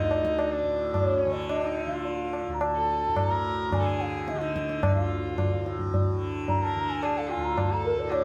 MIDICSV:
0, 0, Header, 1, 5, 480
1, 0, Start_track
1, 0, Tempo, 557103
1, 1292, Time_signature, 3, 2, 24, 8
1, 3689, Tempo, 549954
1, 7145, End_track
2, 0, Start_track
2, 0, Title_t, "Bansuri"
2, 0, Program_c, 0, 73
2, 0, Note_on_c, 0, 75, 84
2, 329, Note_off_c, 0, 75, 0
2, 329, Note_on_c, 0, 75, 77
2, 432, Note_off_c, 0, 75, 0
2, 432, Note_on_c, 0, 74, 77
2, 811, Note_off_c, 0, 74, 0
2, 811, Note_on_c, 0, 74, 72
2, 905, Note_off_c, 0, 74, 0
2, 905, Note_on_c, 0, 73, 72
2, 1134, Note_on_c, 0, 75, 54
2, 1147, Note_off_c, 0, 73, 0
2, 1159, Note_on_c, 0, 74, 72
2, 1171, Note_off_c, 0, 75, 0
2, 1279, Note_off_c, 0, 74, 0
2, 1284, Note_on_c, 0, 75, 79
2, 1522, Note_on_c, 0, 77, 69
2, 1535, Note_off_c, 0, 75, 0
2, 2008, Note_off_c, 0, 77, 0
2, 2186, Note_on_c, 0, 82, 64
2, 2245, Note_on_c, 0, 81, 91
2, 2258, Note_off_c, 0, 82, 0
2, 2726, Note_off_c, 0, 81, 0
2, 2726, Note_on_c, 0, 81, 88
2, 2829, Note_off_c, 0, 81, 0
2, 2829, Note_on_c, 0, 82, 88
2, 3218, Note_on_c, 0, 80, 89
2, 3231, Note_off_c, 0, 82, 0
2, 3456, Note_on_c, 0, 77, 76
2, 3469, Note_off_c, 0, 80, 0
2, 3695, Note_on_c, 0, 75, 76
2, 3708, Note_off_c, 0, 77, 0
2, 4185, Note_on_c, 0, 77, 74
2, 4198, Note_off_c, 0, 75, 0
2, 4900, Note_off_c, 0, 77, 0
2, 5614, Note_on_c, 0, 82, 91
2, 5740, Note_on_c, 0, 81, 86
2, 5753, Note_off_c, 0, 82, 0
2, 5846, Note_on_c, 0, 82, 80
2, 5859, Note_off_c, 0, 81, 0
2, 5971, Note_on_c, 0, 80, 86
2, 5984, Note_off_c, 0, 82, 0
2, 6082, Note_off_c, 0, 80, 0
2, 6087, Note_on_c, 0, 81, 82
2, 6214, Note_on_c, 0, 77, 76
2, 6227, Note_off_c, 0, 81, 0
2, 6330, Note_on_c, 0, 80, 78
2, 6343, Note_off_c, 0, 77, 0
2, 6445, Note_on_c, 0, 82, 82
2, 6458, Note_off_c, 0, 80, 0
2, 6571, Note_on_c, 0, 81, 88
2, 6584, Note_off_c, 0, 82, 0
2, 6699, Note_on_c, 0, 82, 83
2, 6712, Note_off_c, 0, 81, 0
2, 6802, Note_off_c, 0, 82, 0
2, 6807, Note_on_c, 0, 70, 73
2, 6929, Note_on_c, 0, 74, 72
2, 6942, Note_off_c, 0, 70, 0
2, 7050, Note_on_c, 0, 73, 78
2, 7063, Note_off_c, 0, 74, 0
2, 7145, Note_off_c, 0, 73, 0
2, 7145, End_track
3, 0, Start_track
3, 0, Title_t, "Sarangi"
3, 0, Program_c, 1, 110
3, 0, Note_on_c, 1, 63, 60
3, 448, Note_on_c, 1, 62, 57
3, 461, Note_off_c, 1, 63, 0
3, 932, Note_off_c, 1, 62, 0
3, 932, Note_on_c, 1, 62, 54
3, 1036, Note_off_c, 1, 62, 0
3, 1036, Note_on_c, 1, 61, 54
3, 1293, Note_on_c, 1, 62, 58
3, 1306, Note_off_c, 1, 61, 0
3, 1418, Note_on_c, 1, 63, 52
3, 1431, Note_off_c, 1, 62, 0
3, 1663, Note_on_c, 1, 65, 54
3, 1676, Note_off_c, 1, 63, 0
3, 2138, Note_off_c, 1, 65, 0
3, 2379, Note_on_c, 1, 69, 65
3, 2853, Note_on_c, 1, 70, 68
3, 2866, Note_off_c, 1, 69, 0
3, 3268, Note_on_c, 1, 69, 43
3, 3281, Note_off_c, 1, 70, 0
3, 3326, Note_on_c, 1, 68, 64
3, 3339, Note_off_c, 1, 69, 0
3, 3806, Note_on_c, 1, 63, 55
3, 3820, Note_off_c, 1, 68, 0
3, 4288, Note_off_c, 1, 63, 0
3, 4293, Note_on_c, 1, 65, 46
3, 4980, Note_off_c, 1, 65, 0
3, 5739, Note_on_c, 1, 70, 66
3, 6091, Note_on_c, 1, 68, 58
3, 6104, Note_off_c, 1, 70, 0
3, 6212, Note_on_c, 1, 69, 65
3, 6225, Note_off_c, 1, 68, 0
3, 6325, Note_on_c, 1, 65, 63
3, 6338, Note_off_c, 1, 69, 0
3, 6683, Note_on_c, 1, 69, 59
3, 6696, Note_off_c, 1, 65, 0
3, 7039, Note_on_c, 1, 62, 59
3, 7052, Note_off_c, 1, 69, 0
3, 7145, Note_off_c, 1, 62, 0
3, 7145, End_track
4, 0, Start_track
4, 0, Title_t, "Tanpura"
4, 0, Program_c, 2, 104
4, 0, Note_on_c, 2, 45, 48
4, 0, Note_on_c, 2, 50, 52
4, 7, Note_on_c, 2, 38, 56
4, 541, Note_off_c, 2, 45, 0
4, 541, Note_on_c, 2, 45, 51
4, 1071, Note_off_c, 2, 50, 0
4, 1075, Note_on_c, 2, 50, 54
4, 1601, Note_off_c, 2, 50, 0
4, 1601, Note_on_c, 2, 50, 56
4, 2127, Note_off_c, 2, 38, 0
4, 2130, Note_on_c, 2, 38, 55
4, 2646, Note_off_c, 2, 45, 0
4, 2649, Note_on_c, 2, 45, 55
4, 3188, Note_off_c, 2, 50, 0
4, 3188, Note_on_c, 2, 50, 60
4, 3722, Note_off_c, 2, 50, 0
4, 3722, Note_on_c, 2, 50, 49
4, 4233, Note_off_c, 2, 38, 0
4, 4236, Note_on_c, 2, 38, 50
4, 4771, Note_off_c, 2, 45, 0
4, 4775, Note_on_c, 2, 45, 50
4, 5293, Note_off_c, 2, 50, 0
4, 5293, Note_on_c, 2, 50, 51
4, 5842, Note_off_c, 2, 50, 0
4, 5842, Note_on_c, 2, 50, 59
4, 6372, Note_off_c, 2, 38, 0
4, 6376, Note_on_c, 2, 38, 54
4, 6887, Note_off_c, 2, 45, 0
4, 6890, Note_on_c, 2, 45, 54
4, 7145, Note_off_c, 2, 38, 0
4, 7145, Note_off_c, 2, 45, 0
4, 7145, Note_off_c, 2, 50, 0
4, 7145, End_track
5, 0, Start_track
5, 0, Title_t, "Tabla"
5, 94, Note_on_c, 9, 60, 55
5, 180, Note_off_c, 9, 60, 0
5, 213, Note_on_c, 9, 37, 50
5, 299, Note_off_c, 9, 37, 0
5, 332, Note_on_c, 9, 60, 62
5, 418, Note_off_c, 9, 60, 0
5, 812, Note_on_c, 9, 60, 68
5, 812, Note_on_c, 9, 64, 59
5, 898, Note_off_c, 9, 60, 0
5, 898, Note_off_c, 9, 64, 0
5, 1288, Note_on_c, 9, 60, 67
5, 1374, Note_off_c, 9, 60, 0
5, 1766, Note_on_c, 9, 63, 67
5, 1852, Note_off_c, 9, 63, 0
5, 2009, Note_on_c, 9, 60, 49
5, 2095, Note_off_c, 9, 60, 0
5, 2248, Note_on_c, 9, 60, 72
5, 2334, Note_off_c, 9, 60, 0
5, 2726, Note_on_c, 9, 60, 68
5, 2726, Note_on_c, 9, 64, 60
5, 2812, Note_off_c, 9, 60, 0
5, 2812, Note_off_c, 9, 64, 0
5, 3209, Note_on_c, 9, 60, 71
5, 3209, Note_on_c, 9, 64, 60
5, 3295, Note_off_c, 9, 60, 0
5, 3295, Note_off_c, 9, 64, 0
5, 3451, Note_on_c, 9, 62, 52
5, 3538, Note_off_c, 9, 62, 0
5, 3685, Note_on_c, 9, 62, 69
5, 3773, Note_off_c, 9, 62, 0
5, 3805, Note_on_c, 9, 62, 61
5, 3892, Note_off_c, 9, 62, 0
5, 3930, Note_on_c, 9, 37, 52
5, 4018, Note_off_c, 9, 37, 0
5, 4047, Note_on_c, 9, 62, 51
5, 4135, Note_off_c, 9, 62, 0
5, 4168, Note_on_c, 9, 60, 86
5, 4168, Note_on_c, 9, 64, 87
5, 4255, Note_off_c, 9, 60, 0
5, 4255, Note_off_c, 9, 64, 0
5, 4649, Note_on_c, 9, 60, 70
5, 4649, Note_on_c, 9, 64, 62
5, 4736, Note_off_c, 9, 60, 0
5, 4736, Note_off_c, 9, 64, 0
5, 4893, Note_on_c, 9, 62, 53
5, 4980, Note_off_c, 9, 62, 0
5, 5006, Note_on_c, 9, 64, 48
5, 5093, Note_off_c, 9, 64, 0
5, 5135, Note_on_c, 9, 63, 69
5, 5135, Note_on_c, 9, 64, 55
5, 5222, Note_off_c, 9, 63, 0
5, 5222, Note_off_c, 9, 64, 0
5, 5608, Note_on_c, 9, 63, 67
5, 5608, Note_on_c, 9, 64, 60
5, 5696, Note_off_c, 9, 63, 0
5, 5696, Note_off_c, 9, 64, 0
5, 6086, Note_on_c, 9, 60, 69
5, 6173, Note_off_c, 9, 60, 0
5, 6563, Note_on_c, 9, 60, 64
5, 6563, Note_on_c, 9, 64, 60
5, 6650, Note_off_c, 9, 60, 0
5, 6650, Note_off_c, 9, 64, 0
5, 7037, Note_on_c, 9, 60, 71
5, 7125, Note_off_c, 9, 60, 0
5, 7145, End_track
0, 0, End_of_file